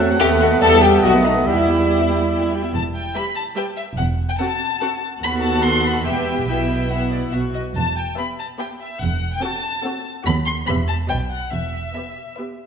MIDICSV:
0, 0, Header, 1, 11, 480
1, 0, Start_track
1, 0, Key_signature, 1, "minor"
1, 0, Tempo, 419287
1, 223, Time_signature, 3, 2, 24, 8
1, 12224, Tempo, 425834
1, 14464, End_track
2, 0, Start_track
2, 0, Title_t, "Violin section"
2, 0, Program_c, 0, 48
2, 121, Note_on_c, 0, 78, 54
2, 232, Note_off_c, 0, 78, 0
2, 237, Note_on_c, 0, 75, 56
2, 341, Note_off_c, 0, 75, 0
2, 356, Note_on_c, 0, 78, 54
2, 468, Note_off_c, 0, 78, 0
2, 484, Note_on_c, 0, 75, 58
2, 592, Note_off_c, 0, 75, 0
2, 610, Note_on_c, 0, 78, 50
2, 714, Note_off_c, 0, 78, 0
2, 717, Note_on_c, 0, 79, 58
2, 820, Note_off_c, 0, 79, 0
2, 841, Note_on_c, 0, 76, 54
2, 949, Note_off_c, 0, 76, 0
2, 956, Note_on_c, 0, 79, 54
2, 1066, Note_off_c, 0, 79, 0
2, 1071, Note_on_c, 0, 76, 50
2, 1184, Note_off_c, 0, 76, 0
2, 1194, Note_on_c, 0, 78, 53
2, 1298, Note_off_c, 0, 78, 0
2, 1307, Note_on_c, 0, 75, 46
2, 1423, Note_off_c, 0, 75, 0
2, 1427, Note_on_c, 0, 78, 44
2, 1541, Note_on_c, 0, 75, 42
2, 1544, Note_off_c, 0, 78, 0
2, 1662, Note_off_c, 0, 75, 0
2, 1672, Note_on_c, 0, 79, 43
2, 1780, Note_off_c, 0, 79, 0
2, 1785, Note_on_c, 0, 76, 38
2, 1905, Note_off_c, 0, 76, 0
2, 1908, Note_on_c, 0, 79, 41
2, 2027, Note_off_c, 0, 79, 0
2, 2035, Note_on_c, 0, 76, 38
2, 2151, Note_off_c, 0, 76, 0
2, 2163, Note_on_c, 0, 79, 40
2, 2268, Note_off_c, 0, 79, 0
2, 2281, Note_on_c, 0, 76, 35
2, 2395, Note_off_c, 0, 76, 0
2, 2398, Note_on_c, 0, 79, 35
2, 2515, Note_off_c, 0, 79, 0
2, 2518, Note_on_c, 0, 76, 34
2, 2635, Note_off_c, 0, 76, 0
2, 2654, Note_on_c, 0, 79, 35
2, 2756, Note_off_c, 0, 79, 0
2, 2771, Note_on_c, 0, 76, 34
2, 2884, Note_off_c, 0, 76, 0
2, 2905, Note_on_c, 0, 79, 34
2, 3011, Note_off_c, 0, 79, 0
2, 3019, Note_on_c, 0, 76, 33
2, 3128, Note_off_c, 0, 76, 0
2, 3138, Note_on_c, 0, 81, 70
2, 3229, Note_off_c, 0, 81, 0
2, 3369, Note_on_c, 0, 79, 59
2, 3599, Note_off_c, 0, 79, 0
2, 3604, Note_on_c, 0, 83, 73
2, 3840, Note_off_c, 0, 83, 0
2, 3844, Note_on_c, 0, 81, 63
2, 3936, Note_off_c, 0, 81, 0
2, 4085, Note_on_c, 0, 79, 64
2, 4177, Note_off_c, 0, 79, 0
2, 4313, Note_on_c, 0, 76, 57
2, 4405, Note_off_c, 0, 76, 0
2, 4549, Note_on_c, 0, 78, 67
2, 4640, Note_off_c, 0, 78, 0
2, 4918, Note_on_c, 0, 79, 67
2, 4964, Note_off_c, 0, 79, 0
2, 5028, Note_on_c, 0, 81, 75
2, 5730, Note_off_c, 0, 81, 0
2, 5998, Note_on_c, 0, 83, 92
2, 6089, Note_off_c, 0, 83, 0
2, 6219, Note_on_c, 0, 81, 77
2, 6455, Note_off_c, 0, 81, 0
2, 6455, Note_on_c, 0, 84, 88
2, 6698, Note_off_c, 0, 84, 0
2, 6703, Note_on_c, 0, 83, 70
2, 6942, Note_off_c, 0, 83, 0
2, 6946, Note_on_c, 0, 79, 69
2, 7418, Note_off_c, 0, 79, 0
2, 7431, Note_on_c, 0, 79, 59
2, 7904, Note_off_c, 0, 79, 0
2, 7913, Note_on_c, 0, 78, 46
2, 8394, Note_off_c, 0, 78, 0
2, 8874, Note_on_c, 0, 81, 68
2, 9100, Note_off_c, 0, 81, 0
2, 9126, Note_on_c, 0, 79, 54
2, 9363, Note_off_c, 0, 79, 0
2, 9368, Note_on_c, 0, 83, 68
2, 9459, Note_off_c, 0, 83, 0
2, 9609, Note_on_c, 0, 81, 56
2, 9700, Note_off_c, 0, 81, 0
2, 9841, Note_on_c, 0, 79, 62
2, 9933, Note_off_c, 0, 79, 0
2, 10081, Note_on_c, 0, 76, 55
2, 10315, Note_off_c, 0, 76, 0
2, 10326, Note_on_c, 0, 78, 62
2, 10681, Note_off_c, 0, 78, 0
2, 10690, Note_on_c, 0, 79, 65
2, 10795, Note_on_c, 0, 81, 71
2, 10801, Note_off_c, 0, 79, 0
2, 11508, Note_off_c, 0, 81, 0
2, 11749, Note_on_c, 0, 83, 84
2, 11841, Note_off_c, 0, 83, 0
2, 11975, Note_on_c, 0, 84, 78
2, 12066, Note_off_c, 0, 84, 0
2, 12213, Note_on_c, 0, 83, 76
2, 12303, Note_off_c, 0, 83, 0
2, 12452, Note_on_c, 0, 81, 66
2, 12543, Note_off_c, 0, 81, 0
2, 12686, Note_on_c, 0, 79, 68
2, 12776, Note_off_c, 0, 79, 0
2, 12925, Note_on_c, 0, 78, 56
2, 13161, Note_on_c, 0, 76, 48
2, 13165, Note_off_c, 0, 78, 0
2, 14134, Note_off_c, 0, 76, 0
2, 14464, End_track
3, 0, Start_track
3, 0, Title_t, "Flute section"
3, 0, Program_c, 1, 73
3, 206, Note_on_c, 1, 79, 83
3, 275, Note_off_c, 1, 79, 0
3, 450, Note_on_c, 1, 78, 62
3, 519, Note_off_c, 1, 78, 0
3, 692, Note_on_c, 1, 81, 92
3, 929, Note_off_c, 1, 81, 0
3, 933, Note_on_c, 1, 79, 75
3, 1175, Note_off_c, 1, 79, 0
3, 1181, Note_on_c, 1, 78, 81
3, 1420, Note_off_c, 1, 78, 0
3, 1430, Note_on_c, 1, 75, 65
3, 1667, Note_off_c, 1, 75, 0
3, 1669, Note_on_c, 1, 76, 55
3, 2854, Note_off_c, 1, 76, 0
3, 14464, End_track
4, 0, Start_track
4, 0, Title_t, "Oboe"
4, 0, Program_c, 2, 68
4, 0, Note_on_c, 2, 78, 57
4, 660, Note_off_c, 2, 78, 0
4, 706, Note_on_c, 2, 76, 57
4, 1176, Note_on_c, 2, 75, 54
4, 1193, Note_off_c, 2, 76, 0
4, 1673, Note_on_c, 2, 76, 51
4, 1690, Note_off_c, 2, 75, 0
4, 2880, Note_off_c, 2, 76, 0
4, 14464, End_track
5, 0, Start_track
5, 0, Title_t, "Violin section"
5, 0, Program_c, 3, 48
5, 223, Note_on_c, 3, 67, 105
5, 314, Note_off_c, 3, 67, 0
5, 456, Note_on_c, 3, 66, 72
5, 548, Note_off_c, 3, 66, 0
5, 702, Note_on_c, 3, 69, 108
5, 935, Note_off_c, 3, 69, 0
5, 940, Note_on_c, 3, 67, 85
5, 1179, Note_off_c, 3, 67, 0
5, 1197, Note_on_c, 3, 66, 84
5, 1288, Note_off_c, 3, 66, 0
5, 1432, Note_on_c, 3, 63, 62
5, 1524, Note_off_c, 3, 63, 0
5, 1670, Note_on_c, 3, 64, 71
5, 2855, Note_off_c, 3, 64, 0
5, 3606, Note_on_c, 3, 71, 41
5, 3608, Note_on_c, 3, 76, 40
5, 3698, Note_off_c, 3, 71, 0
5, 3699, Note_off_c, 3, 76, 0
5, 4080, Note_on_c, 3, 76, 44
5, 4083, Note_on_c, 3, 71, 42
5, 4172, Note_off_c, 3, 76, 0
5, 4175, Note_off_c, 3, 71, 0
5, 5020, Note_on_c, 3, 69, 51
5, 5024, Note_on_c, 3, 78, 53
5, 5111, Note_off_c, 3, 69, 0
5, 5116, Note_off_c, 3, 78, 0
5, 5504, Note_on_c, 3, 78, 49
5, 5506, Note_on_c, 3, 69, 48
5, 5596, Note_off_c, 3, 78, 0
5, 5598, Note_off_c, 3, 69, 0
5, 5977, Note_on_c, 3, 78, 59
5, 5980, Note_on_c, 3, 69, 59
5, 6892, Note_off_c, 3, 78, 0
5, 6894, Note_off_c, 3, 69, 0
5, 6934, Note_on_c, 3, 76, 49
5, 6937, Note_on_c, 3, 71, 50
5, 7397, Note_off_c, 3, 71, 0
5, 7398, Note_off_c, 3, 76, 0
5, 7411, Note_on_c, 3, 71, 41
5, 7412, Note_on_c, 3, 76, 44
5, 7887, Note_off_c, 3, 76, 0
5, 7894, Note_off_c, 3, 71, 0
5, 7901, Note_on_c, 3, 76, 48
5, 8130, Note_off_c, 3, 76, 0
5, 8147, Note_on_c, 3, 74, 38
5, 8239, Note_off_c, 3, 74, 0
5, 8387, Note_on_c, 3, 76, 44
5, 8479, Note_off_c, 3, 76, 0
5, 8632, Note_on_c, 3, 75, 36
5, 8724, Note_off_c, 3, 75, 0
5, 9356, Note_on_c, 3, 71, 47
5, 9360, Note_on_c, 3, 76, 47
5, 9715, Note_off_c, 3, 71, 0
5, 9717, Note_off_c, 3, 76, 0
5, 9834, Note_on_c, 3, 71, 46
5, 9836, Note_on_c, 3, 76, 45
5, 10193, Note_off_c, 3, 71, 0
5, 10194, Note_off_c, 3, 76, 0
5, 10793, Note_on_c, 3, 78, 54
5, 10797, Note_on_c, 3, 69, 57
5, 11148, Note_off_c, 3, 78, 0
5, 11151, Note_off_c, 3, 69, 0
5, 11273, Note_on_c, 3, 78, 54
5, 11276, Note_on_c, 3, 69, 53
5, 11625, Note_off_c, 3, 78, 0
5, 11627, Note_off_c, 3, 69, 0
5, 11738, Note_on_c, 3, 78, 59
5, 11746, Note_on_c, 3, 69, 55
5, 12096, Note_off_c, 3, 78, 0
5, 12101, Note_off_c, 3, 69, 0
5, 12226, Note_on_c, 3, 71, 57
5, 12231, Note_on_c, 3, 76, 57
5, 12577, Note_off_c, 3, 71, 0
5, 12579, Note_off_c, 3, 76, 0
5, 12690, Note_on_c, 3, 75, 46
5, 12693, Note_on_c, 3, 71, 45
5, 13048, Note_off_c, 3, 75, 0
5, 13050, Note_off_c, 3, 71, 0
5, 13665, Note_on_c, 3, 71, 38
5, 13667, Note_on_c, 3, 76, 42
5, 14022, Note_off_c, 3, 71, 0
5, 14023, Note_off_c, 3, 76, 0
5, 14145, Note_on_c, 3, 71, 34
5, 14151, Note_on_c, 3, 76, 34
5, 14464, Note_off_c, 3, 71, 0
5, 14464, Note_off_c, 3, 76, 0
5, 14464, End_track
6, 0, Start_track
6, 0, Title_t, "French horn section"
6, 0, Program_c, 4, 60
6, 0, Note_on_c, 4, 60, 57
6, 0, Note_on_c, 4, 66, 57
6, 220, Note_on_c, 4, 69, 64
6, 221, Note_on_c, 4, 59, 66
6, 230, Note_off_c, 4, 60, 0
6, 231, Note_off_c, 4, 66, 0
6, 693, Note_on_c, 4, 67, 64
6, 698, Note_off_c, 4, 69, 0
6, 1157, Note_off_c, 4, 59, 0
6, 1174, Note_off_c, 4, 67, 0
6, 1185, Note_on_c, 4, 63, 57
6, 1192, Note_on_c, 4, 57, 57
6, 1665, Note_off_c, 4, 63, 0
6, 1669, Note_off_c, 4, 57, 0
6, 1671, Note_on_c, 4, 64, 52
6, 1675, Note_on_c, 4, 55, 51
6, 2855, Note_off_c, 4, 64, 0
6, 2857, Note_off_c, 4, 55, 0
6, 14464, End_track
7, 0, Start_track
7, 0, Title_t, "Viola section"
7, 0, Program_c, 5, 48
7, 119, Note_on_c, 5, 60, 50
7, 120, Note_on_c, 5, 66, 54
7, 230, Note_off_c, 5, 60, 0
7, 231, Note_off_c, 5, 66, 0
7, 244, Note_on_c, 5, 69, 55
7, 245, Note_on_c, 5, 57, 56
7, 345, Note_off_c, 5, 69, 0
7, 346, Note_off_c, 5, 57, 0
7, 350, Note_on_c, 5, 71, 54
7, 352, Note_on_c, 5, 59, 48
7, 465, Note_off_c, 5, 71, 0
7, 467, Note_off_c, 5, 59, 0
7, 473, Note_on_c, 5, 57, 59
7, 476, Note_on_c, 5, 69, 59
7, 586, Note_off_c, 5, 57, 0
7, 588, Note_off_c, 5, 69, 0
7, 595, Note_on_c, 5, 71, 53
7, 598, Note_on_c, 5, 59, 55
7, 702, Note_on_c, 5, 55, 52
7, 707, Note_off_c, 5, 71, 0
7, 708, Note_on_c, 5, 67, 57
7, 709, Note_off_c, 5, 59, 0
7, 812, Note_off_c, 5, 55, 0
7, 815, Note_off_c, 5, 67, 0
7, 827, Note_on_c, 5, 64, 55
7, 829, Note_on_c, 5, 59, 55
7, 942, Note_off_c, 5, 64, 0
7, 943, Note_off_c, 5, 59, 0
7, 948, Note_on_c, 5, 55, 52
7, 949, Note_on_c, 5, 67, 50
7, 1062, Note_off_c, 5, 55, 0
7, 1063, Note_off_c, 5, 67, 0
7, 1074, Note_on_c, 5, 59, 52
7, 1076, Note_on_c, 5, 64, 48
7, 1186, Note_off_c, 5, 59, 0
7, 1186, Note_off_c, 5, 64, 0
7, 1192, Note_on_c, 5, 57, 55
7, 1192, Note_on_c, 5, 69, 54
7, 1297, Note_off_c, 5, 57, 0
7, 1297, Note_off_c, 5, 69, 0
7, 1306, Note_on_c, 5, 59, 51
7, 1307, Note_on_c, 5, 71, 47
7, 1423, Note_off_c, 5, 59, 0
7, 1423, Note_off_c, 5, 71, 0
7, 1427, Note_on_c, 5, 57, 43
7, 1428, Note_on_c, 5, 69, 47
7, 1544, Note_off_c, 5, 57, 0
7, 1545, Note_off_c, 5, 69, 0
7, 1551, Note_on_c, 5, 59, 42
7, 1555, Note_on_c, 5, 71, 45
7, 1667, Note_off_c, 5, 59, 0
7, 1669, Note_off_c, 5, 71, 0
7, 1674, Note_on_c, 5, 55, 44
7, 1674, Note_on_c, 5, 67, 46
7, 1781, Note_off_c, 5, 55, 0
7, 1781, Note_off_c, 5, 67, 0
7, 1793, Note_on_c, 5, 59, 39
7, 1794, Note_on_c, 5, 64, 39
7, 1909, Note_off_c, 5, 59, 0
7, 1909, Note_off_c, 5, 64, 0
7, 1922, Note_on_c, 5, 55, 41
7, 1927, Note_on_c, 5, 67, 40
7, 2030, Note_on_c, 5, 64, 37
7, 2032, Note_on_c, 5, 59, 37
7, 2034, Note_off_c, 5, 55, 0
7, 2036, Note_off_c, 5, 67, 0
7, 2148, Note_off_c, 5, 64, 0
7, 2149, Note_off_c, 5, 59, 0
7, 2161, Note_on_c, 5, 67, 37
7, 2162, Note_on_c, 5, 55, 38
7, 2267, Note_off_c, 5, 55, 0
7, 2267, Note_off_c, 5, 67, 0
7, 2277, Note_on_c, 5, 64, 38
7, 2280, Note_on_c, 5, 59, 38
7, 2393, Note_off_c, 5, 64, 0
7, 2395, Note_off_c, 5, 59, 0
7, 2395, Note_on_c, 5, 67, 36
7, 2398, Note_on_c, 5, 55, 38
7, 2513, Note_off_c, 5, 67, 0
7, 2515, Note_off_c, 5, 55, 0
7, 2525, Note_on_c, 5, 64, 33
7, 2526, Note_on_c, 5, 59, 34
7, 2639, Note_off_c, 5, 59, 0
7, 2639, Note_off_c, 5, 64, 0
7, 2639, Note_on_c, 5, 67, 35
7, 2641, Note_on_c, 5, 55, 37
7, 2749, Note_off_c, 5, 55, 0
7, 2749, Note_off_c, 5, 67, 0
7, 2756, Note_on_c, 5, 59, 33
7, 2760, Note_on_c, 5, 64, 32
7, 2876, Note_off_c, 5, 59, 0
7, 2878, Note_off_c, 5, 64, 0
7, 2894, Note_on_c, 5, 55, 34
7, 2895, Note_on_c, 5, 67, 32
7, 3001, Note_on_c, 5, 64, 32
7, 3006, Note_off_c, 5, 55, 0
7, 3006, Note_off_c, 5, 67, 0
7, 3007, Note_on_c, 5, 59, 33
7, 3119, Note_off_c, 5, 64, 0
7, 3122, Note_off_c, 5, 59, 0
7, 3602, Note_on_c, 5, 55, 39
7, 3608, Note_on_c, 5, 67, 40
7, 3693, Note_off_c, 5, 55, 0
7, 3699, Note_off_c, 5, 67, 0
7, 4066, Note_on_c, 5, 55, 41
7, 4067, Note_on_c, 5, 67, 42
7, 4158, Note_off_c, 5, 55, 0
7, 4158, Note_off_c, 5, 67, 0
7, 5038, Note_on_c, 5, 66, 47
7, 5039, Note_on_c, 5, 60, 46
7, 5130, Note_off_c, 5, 66, 0
7, 5131, Note_off_c, 5, 60, 0
7, 5514, Note_on_c, 5, 66, 53
7, 5515, Note_on_c, 5, 60, 50
7, 5606, Note_off_c, 5, 60, 0
7, 5606, Note_off_c, 5, 66, 0
7, 5978, Note_on_c, 5, 66, 52
7, 5979, Note_on_c, 5, 59, 58
7, 6893, Note_off_c, 5, 66, 0
7, 6894, Note_off_c, 5, 59, 0
7, 6936, Note_on_c, 5, 67, 47
7, 6938, Note_on_c, 5, 59, 50
7, 7404, Note_off_c, 5, 59, 0
7, 7418, Note_on_c, 5, 59, 38
7, 7422, Note_off_c, 5, 67, 0
7, 7423, Note_on_c, 5, 64, 40
7, 7897, Note_off_c, 5, 59, 0
7, 7906, Note_off_c, 5, 64, 0
7, 7917, Note_on_c, 5, 59, 40
7, 7920, Note_on_c, 5, 64, 36
7, 8381, Note_off_c, 5, 59, 0
7, 8388, Note_off_c, 5, 64, 0
7, 8395, Note_on_c, 5, 59, 37
7, 8398, Note_on_c, 5, 66, 38
7, 8487, Note_off_c, 5, 59, 0
7, 8649, Note_off_c, 5, 66, 0
7, 9352, Note_on_c, 5, 67, 42
7, 9353, Note_on_c, 5, 59, 45
7, 9713, Note_off_c, 5, 59, 0
7, 9713, Note_off_c, 5, 67, 0
7, 9832, Note_on_c, 5, 59, 47
7, 9838, Note_on_c, 5, 67, 48
7, 10192, Note_off_c, 5, 59, 0
7, 10195, Note_off_c, 5, 67, 0
7, 10792, Note_on_c, 5, 60, 53
7, 10792, Note_on_c, 5, 66, 52
7, 11148, Note_off_c, 5, 60, 0
7, 11148, Note_off_c, 5, 66, 0
7, 11274, Note_on_c, 5, 60, 55
7, 11277, Note_on_c, 5, 66, 53
7, 11626, Note_off_c, 5, 60, 0
7, 11627, Note_off_c, 5, 66, 0
7, 11752, Note_on_c, 5, 59, 55
7, 11757, Note_on_c, 5, 66, 54
7, 12104, Note_off_c, 5, 59, 0
7, 12107, Note_off_c, 5, 66, 0
7, 12225, Note_on_c, 5, 59, 53
7, 12226, Note_on_c, 5, 67, 50
7, 12577, Note_off_c, 5, 59, 0
7, 12577, Note_off_c, 5, 67, 0
7, 12696, Note_on_c, 5, 59, 45
7, 12697, Note_on_c, 5, 66, 46
7, 13052, Note_off_c, 5, 59, 0
7, 13052, Note_off_c, 5, 66, 0
7, 13657, Note_on_c, 5, 59, 36
7, 13663, Note_on_c, 5, 67, 38
7, 14017, Note_off_c, 5, 59, 0
7, 14021, Note_off_c, 5, 67, 0
7, 14144, Note_on_c, 5, 59, 37
7, 14148, Note_on_c, 5, 67, 35
7, 14464, Note_off_c, 5, 59, 0
7, 14464, Note_off_c, 5, 67, 0
7, 14464, End_track
8, 0, Start_track
8, 0, Title_t, "Clarinet"
8, 0, Program_c, 6, 71
8, 0, Note_on_c, 6, 60, 54
8, 225, Note_on_c, 6, 59, 67
8, 243, Note_off_c, 6, 60, 0
8, 2876, Note_off_c, 6, 59, 0
8, 14464, End_track
9, 0, Start_track
9, 0, Title_t, "Bassoon"
9, 0, Program_c, 7, 70
9, 0, Note_on_c, 7, 54, 53
9, 223, Note_off_c, 7, 54, 0
9, 230, Note_on_c, 7, 57, 64
9, 711, Note_on_c, 7, 55, 61
9, 729, Note_off_c, 7, 57, 0
9, 1193, Note_on_c, 7, 57, 57
9, 1210, Note_off_c, 7, 55, 0
9, 1669, Note_off_c, 7, 57, 0
9, 1681, Note_on_c, 7, 55, 52
9, 2860, Note_off_c, 7, 55, 0
9, 14464, End_track
10, 0, Start_track
10, 0, Title_t, "Cello section"
10, 0, Program_c, 8, 48
10, 0, Note_on_c, 8, 57, 59
10, 220, Note_off_c, 8, 57, 0
10, 232, Note_on_c, 8, 59, 70
10, 695, Note_off_c, 8, 59, 0
10, 707, Note_on_c, 8, 55, 69
10, 1172, Note_off_c, 8, 55, 0
10, 1195, Note_on_c, 8, 54, 61
10, 1670, Note_off_c, 8, 54, 0
10, 1683, Note_on_c, 8, 55, 45
10, 2861, Note_off_c, 8, 55, 0
10, 3132, Note_on_c, 8, 40, 54
10, 3506, Note_off_c, 8, 40, 0
10, 4562, Note_on_c, 8, 40, 61
10, 4935, Note_off_c, 8, 40, 0
10, 5979, Note_on_c, 8, 39, 61
10, 6893, Note_off_c, 8, 39, 0
10, 6938, Note_on_c, 8, 40, 52
10, 7423, Note_off_c, 8, 40, 0
10, 7430, Note_on_c, 8, 47, 43
10, 8376, Note_off_c, 8, 47, 0
10, 8389, Note_on_c, 8, 47, 39
10, 8639, Note_off_c, 8, 47, 0
10, 8875, Note_on_c, 8, 40, 55
10, 9257, Note_off_c, 8, 40, 0
10, 10319, Note_on_c, 8, 40, 58
10, 10697, Note_off_c, 8, 40, 0
10, 11746, Note_on_c, 8, 39, 65
10, 12123, Note_off_c, 8, 39, 0
10, 12225, Note_on_c, 8, 40, 63
10, 12599, Note_off_c, 8, 40, 0
10, 12698, Note_on_c, 8, 47, 55
10, 13075, Note_off_c, 8, 47, 0
10, 13170, Note_on_c, 8, 40, 46
10, 13554, Note_off_c, 8, 40, 0
10, 14464, End_track
11, 0, Start_track
11, 0, Title_t, "Double bass section"
11, 0, Program_c, 10, 48
11, 0, Note_on_c, 10, 40, 59
11, 182, Note_off_c, 10, 40, 0
11, 232, Note_on_c, 10, 39, 68
11, 695, Note_off_c, 10, 39, 0
11, 711, Note_on_c, 10, 40, 65
11, 1174, Note_off_c, 10, 40, 0
11, 1197, Note_on_c, 10, 35, 60
11, 1662, Note_off_c, 10, 35, 0
11, 1679, Note_on_c, 10, 40, 51
11, 2895, Note_off_c, 10, 40, 0
11, 3140, Note_on_c, 10, 28, 56
11, 3510, Note_off_c, 10, 28, 0
11, 4556, Note_on_c, 10, 28, 63
11, 4931, Note_off_c, 10, 28, 0
11, 5986, Note_on_c, 10, 39, 58
11, 6897, Note_off_c, 10, 39, 0
11, 6938, Note_on_c, 10, 28, 51
11, 7418, Note_on_c, 10, 35, 47
11, 7423, Note_off_c, 10, 28, 0
11, 8370, Note_off_c, 10, 35, 0
11, 8393, Note_on_c, 10, 35, 37
11, 8641, Note_off_c, 10, 35, 0
11, 8870, Note_on_c, 10, 28, 53
11, 9255, Note_off_c, 10, 28, 0
11, 10327, Note_on_c, 10, 28, 61
11, 10701, Note_off_c, 10, 28, 0
11, 11751, Note_on_c, 10, 39, 68
11, 12126, Note_off_c, 10, 39, 0
11, 12232, Note_on_c, 10, 28, 61
11, 12602, Note_off_c, 10, 28, 0
11, 12702, Note_on_c, 10, 35, 56
11, 13077, Note_off_c, 10, 35, 0
11, 13180, Note_on_c, 10, 28, 48
11, 13559, Note_off_c, 10, 28, 0
11, 14464, End_track
0, 0, End_of_file